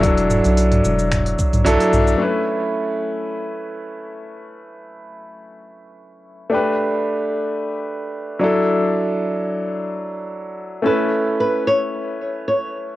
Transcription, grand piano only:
X:1
M:4/4
L:1/8
Q:1/4=111
K:Bm
V:1 name="Grand piano"
[F,DEA]4- [F,DEA] z [F,DEA]2 | [A,CEB]8- | [A,CEB]8 | [A,DGB]6- [A,DGB] [F,DEA]- |
[F,DEA]8 | [A,CEB]8 |]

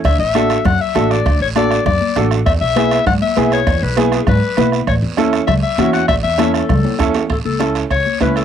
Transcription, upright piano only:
X:1
M:4/4
L:1/8
Q:1/4=198
K:A
V:1 name="Upright piano"
z2 [DFA] z3 [DFA] z | z2 [DFA] z3 [DFA] z | z2 [B,EG] z3 [B,EG] z | z2 [B,EG] z3 [B,EB] z |
z2 [CEA] z3 [CEF] z | z2 [CEA] z3 [CEA] z | z2 [CEA] z3 [CEB] z |]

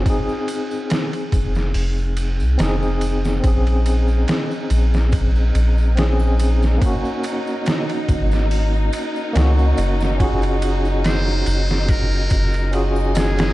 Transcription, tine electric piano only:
X:1
M:4/4
L:1/8
Q:"Swing 16ths" 1/4=71
K:Bbm
V:1 name="Tine electric piano"
[CEA]6 [CEA]2 | [CDA]6 [CDA]2 | [B,DG]6 [B,DG]2 | [DFGA]6 [DFGA]2 |]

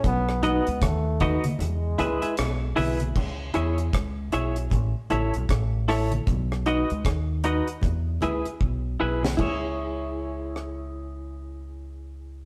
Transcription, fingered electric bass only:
X:1
M:4/4
L:1/16
Q:"Swing 16ths" 1/4=77
K:C#m
V:1 name="Fingered electric bass" clef=bass
B,,,3 C,, D,,3 z E,,2 C,, z B,,,2 B,,,2 | C,,2 E,,2 C,,2 B,,,2 A,,, z A,,, B,,, A,,,4 | B,,,3 C,, D,,3 z E,,2 C,, z B,,,2 B,,,2 | C,,16 |]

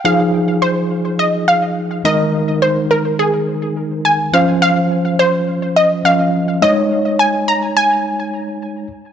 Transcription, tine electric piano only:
X:1
M:4/4
L:1/8
Q:1/4=105
K:Fm
V:1 name="Tine electric piano"
[F,EA]6- [F,EA] [E,A,EB]- | [E,A,EB]6- [E,A,EB] [F,Dc]- | [F,Dc]4- [F,Dc] [F,De]2 [A,Ed]- | [A,Ed]6- [A,Ed] z |]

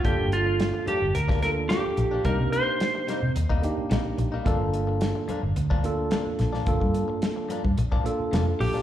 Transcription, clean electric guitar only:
X:1
M:4/4
L:1/16
Q:1/4=109
K:Gm
V:1 name="Clean electric guitar"
[G,,F,B,D] z4 z [G,,F,B,D] z2 [G,,F,B,D] z2 [G,,F,B,D] z2 [F,B,D] | [C,G,B,E] z4 z [C,G,B,E] z2 [C,G,B,E] z2 [C,G,B,E] z2 [G,B,E] | [G,,F,B,D] z4 z [G,,F,B,D] z2 [G,,F,B,D] z2 [G,,F,B,D] z2 [F,B,D] | z6 [G,,F,B,D] z2 [G,,F,B,D] z2 [G,,F,B,D] z2 [F,B,D] |]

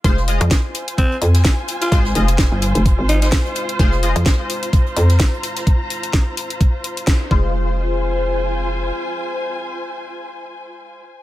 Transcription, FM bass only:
X:1
M:4/4
L:1/16
Q:"Swing 16ths" 1/4=128
K:Fm
V:1 name="FM bass" clef=bass
F,,,3 z6 z F,,2 z4 | z2 F,,,3 z2 F,,,2 A,,,3 z4 | F,,,3 z6 z F,,2 z4 | z12 z2 F,,,2- |
F,,,12 z4 | z16 |]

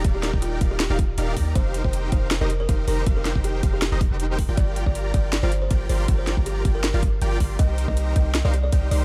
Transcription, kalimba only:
X:1
M:4/4
L:1/16
Q:"Swing 16ths" 1/4=159
K:Gphr
V:1 name="Kalimba"
z G2 z F2 z G8 z | c2 z c2 z c2 z B z B2 z B2 | z B2 z G2 z G8 z | d2 z d2 z d2 z c z c2 z c2 |
z c2 z G2 z B8 z | e2 z e2 z e2 z d z d2 z d2 |]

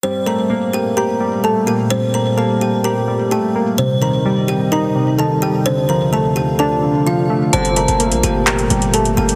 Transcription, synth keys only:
X:1
M:4/4
L:1/8
Q:1/4=128
K:Gm
V:1 name="Synth keys"
G, A, B,2 G G, A, B, | G,2 B,2 G G, A, B, | C, E, G,2 E C, E, G, | D, F, A,2 D D, F, A, |
G, A, B,2 G G, A, B, |]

